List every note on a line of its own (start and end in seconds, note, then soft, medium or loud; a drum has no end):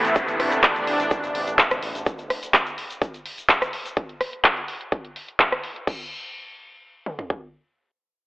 0.00 2.03 C3 medium
0.00 2.03 E3 medium
0.00 2.03 A3 medium
0.00 2.03 B3 medium
0.00 0.14 E4 medium
0.00 downlifter medium
0.04 0.14 A1 medium
0.04 closed hi-hat soft
0.04 shaker medium
0.15 2.05 D4 medium
0.15 kick loud
0.15 closed hi-hat medium
0.15 shaker medium
0.28 0.38 A1 medium
0.28 closed hi-hat soft
0.28 shaker soft
0.40 0.50 B1 loud
0.40 cross-stick medium
0.40 open hi-hat loud
0.52 0.62 A1 medium
0.52 closed hi-hat soft
0.52 shaker medium
0.63 kick loud
0.63 clap loud
0.63 closed hi-hat medium
0.63 shaker medium
0.76 0.85 A1 medium
0.76 closed hi-hat soft
0.76 shaker soft
0.87 0.98 A1 loud
0.87 open hi-hat loud
1.00 1.09 A1 medium
1.00 closed hi-hat soft
1.00 shaker medium
1.11 kick loud
1.11 closed hi-hat medium
1.11 shaker medium
1.24 1.33 A1 medium
1.24 closed hi-hat soft
1.24 shaker soft
1.35 1.45 A1 medium
1.35 open hi-hat loud
1.47 1.57 A1 medium
1.47 closed hi-hat soft
1.47 shaker medium
1.59 kick loud
1.59 clap loud
1.59 closed hi-hat medium
1.59 shaker medium
1.71 1.81 A1 medium
1.71 cross-stick medium
1.71 closed hi-hat soft
1.71 shaker soft
1.82 1.93 A1 medium
1.82 open hi-hat medium
1.95 2.04 A1 medium
1.95 closed hi-hat soft
1.95 shaker medium
2.06 kick loud
2.06 closed hi-hat medium
2.06 shaker medium
2.19 closed hi-hat soft
2.19 shaker soft
2.30 cross-stick medium
2.30 open hi-hat loud
2.43 closed hi-hat soft
2.43 shaker medium
2.54 kick loud
2.54 clap loud
2.54 closed hi-hat medium
2.54 shaker medium
2.66 closed hi-hat soft
2.66 shaker soft
2.78 open hi-hat medium
2.90 closed hi-hat soft
2.90 shaker medium
3.02 kick loud
3.02 closed hi-hat medium
3.02 shaker medium
3.14 closed hi-hat soft
3.14 shaker soft
3.26 open hi-hat loud
3.38 closed hi-hat soft
3.38 shaker medium
3.49 kick loud
3.49 clap loud
3.49 closed hi-hat medium
3.49 shaker medium
3.62 cross-stick medium
3.62 closed hi-hat soft
3.62 shaker soft
3.73 open hi-hat medium
3.85 closed hi-hat soft
3.85 shaker medium
3.97 kick loud
3.97 closed hi-hat medium
4.09 closed hi-hat soft
4.21 cross-stick medium
4.21 open hi-hat loud
4.33 closed hi-hat soft
4.44 kick loud
4.44 clap loud
4.44 closed hi-hat medium
4.57 closed hi-hat soft
4.68 open hi-hat medium
4.81 closed hi-hat soft
4.92 kick loud
4.92 closed hi-hat medium
5.05 closed hi-hat soft
5.16 open hi-hat loud
5.28 closed hi-hat soft
5.40 kick loud
5.40 clap loud
5.40 closed hi-hat medium
5.52 cross-stick medium
5.52 closed hi-hat soft
5.64 open hi-hat medium
5.76 closed hi-hat soft
5.87 kick loud
5.87 crash medium
7.06 mid tom medium
7.19 floor tom medium
7.30 kick medium